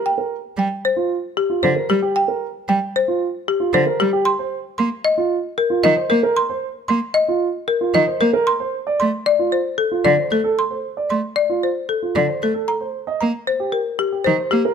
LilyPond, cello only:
\new Staff \with { instrumentName = "Cello" } { \clef bass \time 4/4 \key bes \major \tempo 4 = 114 r4 g16 r4. r16 d16 r16 g16 r16 | r4 g16 r4. r16 d16 r16 g16 r16 | r4 bes16 r4. r16 ees16 r16 bes16 r16 | r4 bes16 r4. r16 ees16 r16 bes16 r16 |
r4 a16 r4. r16 d16 r16 a16 r16 | r4 a16 r4. r16 d16 r16 a16 r16 | r4 bes16 r4. r16 ees16 r16 bes16 r16 | }